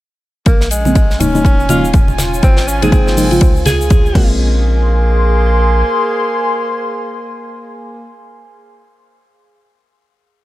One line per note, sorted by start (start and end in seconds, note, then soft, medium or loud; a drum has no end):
0.46 1.18 A#1 medium
0.46 0.69 A#3 medium
0.46 1.69 C#4 medium
0.46 2.41 C#5 medium
0.46 2.41 G#5 medium
0.46 kick loud
0.46 ride medium
0.46 shaker soft
0.61 snare medium
0.61 shaker soft
0.71 1.21 G#3 medium
0.71 ride medium
0.71 shaker medium
0.81 3.83 G#5 medium
0.81 1.20 C6 medium
0.81 muted conga medium
0.85 0.98 C#3 medium
0.85 0.98 F3 medium
0.85 0.98 G#3 medium
0.85 0.98 A#3 medium
0.85 0.99 C4 medium
0.85 shaker soft
0.95 kick loud
0.95 ride medium
0.95 shaker soft
1.10 snare soft
1.10 shaker soft
1.20 2.41 D#1 medium
1.20 1.33 C#3 medium
1.20 1.33 F3 medium
1.20 1.33 G#3 medium
1.20 1.33 A#3 medium
1.20 2.18 C#4 loud
1.20 1.33 D#4 medium
1.20 4.15 F4 medium
1.20 2.42 F5 medium
1.20 ride medium
1.20 low conga medium
1.20 shaker medium
1.35 1.67 C#3 medium
1.35 1.67 F3 medium
1.35 1.67 G#3 medium
1.35 1.67 A#3 medium
1.35 1.67 D#4 medium
1.35 muted conga soft
1.35 shaker soft
1.45 kick loud
1.45 ride medium
1.45 shaker soft
1.60 shaker soft
1.69 1.86 C#3 medium
1.69 1.86 F3 medium
1.69 1.86 G#3 medium
1.69 1.86 A#3 medium
1.69 1.86 D#4 medium
1.69 1.89 F4 medium
1.69 ride medium
1.69 high conga medium
1.69 shaker medium
1.77 2.43 C#5 medium
1.85 shaker soft
1.93 kick loud
1.93 ride medium
1.93 low conga medium
1.93 shaker soft
2.08 muted conga medium
2.08 shaker soft
2.18 snare loud
2.18 ride medium
2.18 high conga medium
2.18 shaker medium
2.34 shaker soft
2.43 3.39 G#1 medium
2.43 2.69 C4 loud
2.43 3.40 C5 medium
2.43 4.13 F5 medium
2.43 kick loud
2.43 ride medium
2.43 shaker soft
2.57 snare loud
2.57 ride medium
2.57 shaker soft
2.68 2.84 C#4 medium
2.68 shaker medium
2.82 3.14 C3 medium
2.82 3.14 F3 medium
2.82 3.14 G#3 medium
2.82 3.15 A#3 medium
2.82 3.81 C4 loud
2.82 3.15 D#4 medium
2.82 3.32 G#4 medium
2.82 ride medium
2.82 muted conga medium
2.82 shaker soft
2.88 3.41 C5 medium
2.88 kick loud
2.88 ride medium
2.93 shaker soft
3.07 snare medium
3.07 shaker soft
3.17 3.28 C3 medium
3.17 3.28 F3 medium
3.17 3.28 G#3 medium
3.17 3.28 A#3 medium
3.17 3.28 D#4 medium
3.17 open hi-hat medium
3.17 shaker medium
3.31 3.55 C#3 medium
3.31 3.55 F3 medium
3.31 3.55 G#3 medium
3.31 3.55 C4 medium
3.31 3.55 F4 medium
3.31 ride soft
3.31 shaker soft
3.41 4.15 C#2 medium
3.41 kick loud
3.41 ride medium
3.41 shaker soft
3.57 shaker soft
3.65 4.36 G#4 medium
3.65 snare soft
3.65 ride medium
3.65 high conga medium
3.65 shaker medium
3.81 4.15 C#5 medium
3.81 shaker soft
3.87 4.15 C6 medium
3.87 kick loud
3.87 ride medium
3.87 low conga medium
3.91 shaker soft
4.06 shaker soft
4.15 5.83 A#1 medium
4.15 8.13 C#3 medium
4.15 8.13 F3 medium
4.15 8.13 G#3 medium
4.15 8.13 A#3 loud
4.15 8.14 A#3 medium
4.15 8.14 C4 medium
4.15 8.13 G#4 medium
4.15 8.13 G#5 medium
4.15 8.13 C6 medium
4.15 kick loud
4.15 crash medium
4.15 high conga medium
4.57 8.55 C6 medium